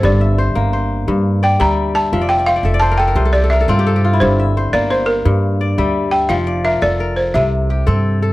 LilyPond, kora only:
<<
  \new Staff \with { instrumentName = "Kora" } { \time 12/8 \key g \dorian \tempo 4. = 115 << { a'8 e''8 c''4 c''4. r8 d''8 e''4 e''8~ | e''8 r1 r4. | r8 e''8 c''4 c''4. r8 d''8 e''4 e''8~ | e''8 d''8 bes'4 bes'4. r8 g'8 a'4 a'8 | } \\ { r1. | e''16 d''16 e''16 d''16 c''16 d''16 e''16 d''16 c''16 bes'16 a'16 bes'16 c''16 a'16 g'16 a'16 bes'16 a'16 f'16 g'16 a'16 g'16 f'16 e'16~ | e'16 r1 r4. r16 | r1. | } >> }
  \new Staff \with { instrumentName = "Kora" } { \clef bass \time 12/8 \key g \dorian g,4 r8 bes4 r8 g,4 r8 g4 r8 | f4 r8 a'4 r8 c4 r8 c'4 r8 | g,4 r8 bes4 r8 g,4 r8 g4 r8 | f4 r8 a'4 r8 c4 r8 c'4 r8 | }
>>